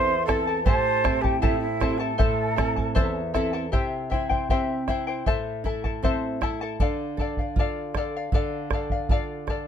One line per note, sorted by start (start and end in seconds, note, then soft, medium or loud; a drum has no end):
0.00 0.64 E2 medium
0.00 0.13 C4 soft
0.00 0.13 E4 soft
0.00 0.27 E4 medium
0.00 0.14 A4 medium
0.00 0.28 A4 medium
0.00 0.23 C5 medium
0.00 0.27 C5 medium
0.00 0.27 E5 medium
0.00 0.28 A5 medium
0.00 0.24 C6 loud
0.26 0.58 C4 soft
0.26 0.47 E4 medium
0.26 0.59 E4 soft
0.26 0.62 A4 medium
0.26 0.59 A4 medium
0.26 0.47 A4 medium
0.26 0.47 E5 medium
0.26 0.63 A5 medium
0.26 0.46 A5 medium
0.26 bombo rim medium
0.26 bombo low medium
0.47 0.65 E4 soft
0.47 0.66 A4 soft
0.47 0.66 A5 medium
0.64 1.40 A2 medium
0.64 1.03 E4 medium
0.64 1.04 G4 medium
0.64 1.03 A4 medium
0.64 1.23 C5 medium
0.64 1.03 C5 medium
0.64 1.24 A5 loud
0.64 1.04 A5 medium
0.64 bombo low medium
1.04 1.65 C4 medium
1.04 1.23 E4 medium
1.04 1.66 E4 soft
1.04 1.66 G4 medium
1.04 1.23 A4 medium
1.04 1.23 C5 medium
1.04 1.22 A5 medium
1.04 bombo rim medium
1.04 bombo low medium
1.22 1.41 E4 soft
1.22 1.40 G4 medium
1.22 1.41 A4 soft
1.22 1.40 G5 medium
1.22 1.41 A5 soft
1.22 bombo low medium
1.40 2.17 A2 medium
1.40 1.59 E4 medium
1.40 1.81 E4 medium
1.40 1.81 G4 medium
1.40 1.81 A4 medium
1.40 1.80 C5 medium
1.40 1.60 E5 medium
1.40 1.81 A5 medium
1.40 bombo low medium
1.59 1.99 E4 medium
1.59 2.00 E5 medium
1.80 2.11 C4 soft
1.80 2.11 E4 soft
1.80 1.99 E4 medium
1.80 2.12 G4 medium
1.80 1.99 A4 medium
1.80 2.00 C5 medium
1.80 1.98 A5 medium
1.80 bombo rim medium
1.80 bombo low soft
1.98 2.17 E4 soft
1.98 3.14 A4 medium
1.98 2.18 A4 medium
1.98 3.14 A5 medium
1.98 2.18 A5 medium
2.18 2.94 A2 medium
2.18 2.56 E4 medium
2.18 2.56 A4 medium
2.18 2.57 C5 medium
2.18 2.55 E5 medium
2.18 2.57 A5 medium
2.18 bombo low medium
2.56 3.19 C4 soft
2.56 2.77 E4 medium
2.56 3.19 E4 soft
2.56 2.76 A4 medium
2.56 3.19 A4 soft
2.56 2.76 E5 medium
2.56 2.75 A5 medium
2.56 bombo rim medium
2.56 bombo low medium
2.76 2.94 E4 soft
2.76 2.95 A4 soft
2.76 2.95 A5 medium
2.76 bombo low soft
2.95 3.71 E2 medium
2.95 3.33 E4 medium
2.95 3.33 A4 medium
2.95 3.34 C5 medium
2.95 3.33 E5 medium
2.95 3.34 A5 loud
2.95 bombo low medium
3.34 3.66 C4 soft
3.34 3.53 E4 medium
3.34 3.66 E4 soft
3.34 3.53 A4 medium
3.34 3.66 A4 medium
3.34 3.53 E5 medium
3.34 3.52 A5 medium
3.34 bombo rim soft
3.34 bombo low soft
3.53 3.71 E4 soft
3.53 3.73 A4 medium
3.53 3.72 A5 medium
3.72 5.23 C3 soft
3.72 4.10 E4 medium
3.72 4.11 G4 medium
3.72 4.10 C5 medium
3.72 4.09 E5 medium
3.72 4.10 G5 medium
3.72 bombo low medium
4.10 4.30 E4 medium
4.10 4.50 E4 soft
4.10 4.29 C5 medium
4.10 4.30 E5 medium
4.10 4.28 G5 medium
4.10 bombo low soft
4.29 4.49 E4 soft
4.29 4.50 C5 soft
4.29 4.49 G5 medium
4.29 bombo low medium
4.49 4.88 C4 soft
4.49 4.88 E4 medium
4.49 4.88 G4 medium
4.49 4.88 C5 medium
4.49 4.87 E5 medium
4.49 4.88 G5 medium
4.49 bombo low medium
4.88 5.25 E4 soft
4.88 5.08 E4 medium
4.88 5.07 C5 medium
4.88 5.07 E5 medium
4.88 5.06 G5 medium
4.88 bombo rim soft
4.88 bombo low soft
5.07 5.26 E4 soft
5.07 5.25 C5 medium
5.07 5.26 G5 soft
5.26 6.77 A2 soft
5.26 5.64 E4 medium
5.26 5.64 A4 medium
5.26 5.65 C5 medium
5.26 5.64 E5 medium
5.26 5.65 A5 medium
5.26 bombo low medium
5.64 6.02 E4 soft
5.64 5.84 E4 medium
5.64 5.84 A4 medium
5.64 5.84 E5 medium
5.64 5.83 A5 medium
5.64 bombo low soft
5.84 6.03 E4 soft
5.84 6.04 A4 soft
5.84 6.03 A5 medium
5.84 bombo low soft
6.03 6.40 C4 soft
6.03 6.41 E4 medium
6.03 6.42 A4 medium
6.03 6.42 C5 medium
6.03 6.41 E5 medium
6.03 6.42 A5 medium
6.03 bombo low medium
6.41 6.79 E4 soft
6.41 6.61 E4 medium
6.41 6.61 A4 medium
6.41 6.61 E5 medium
6.41 6.60 A5 medium
6.41 bombo rim soft
6.41 bombo low soft
6.61 6.80 E4 soft
6.61 6.79 A4 medium
6.61 6.80 A5 medium
6.80 8.30 D3 medium
6.80 7.18 A4 medium
6.80 7.19 D5 medium
6.80 7.19 F5 medium
6.80 bombo low medium
7.17 7.55 A4 soft
7.17 7.38 A4 medium
7.17 7.39 D5 medium
7.17 7.38 F5 medium
7.17 bombo low soft
7.37 7.58 D5 soft
7.37 7.58 F5 soft
7.37 bombo low soft
7.56 7.94 F4 soft
7.56 7.96 A4 medium
7.56 7.96 D5 medium
7.56 bombo low medium
7.60 7.97 F5 medium
7.94 8.32 A4 soft
7.94 8.15 A4 medium
7.94 8.15 D5 medium
7.94 8.15 F5 medium
7.94 bombo rim soft
7.94 bombo low soft
8.17 8.33 D5 soft
8.17 8.34 F5 medium
8.32 9.67 D3 medium
8.32 8.72 A4 medium
8.32 8.72 D5 medium
8.32 8.73 F5 medium
8.32 bombo low medium
8.70 9.08 A4 soft
8.70 8.92 A4 medium
8.70 8.92 D5 medium
8.70 bombo rim medium
8.70 bombo low medium
8.74 8.91 F5 medium
8.90 9.10 D5 soft
8.90 9.11 F5 medium
8.90 bombo low medium
9.09 9.47 F4 soft
9.09 9.48 A4 medium
9.09 9.49 D5 medium
9.09 9.49 F5 medium
9.09 bombo low medium
9.47 9.67 A4 soft
9.47 9.67 A4 medium
9.47 9.67 D5 medium
9.47 9.67 F5 medium
9.47 bombo rim soft
9.47 bombo low soft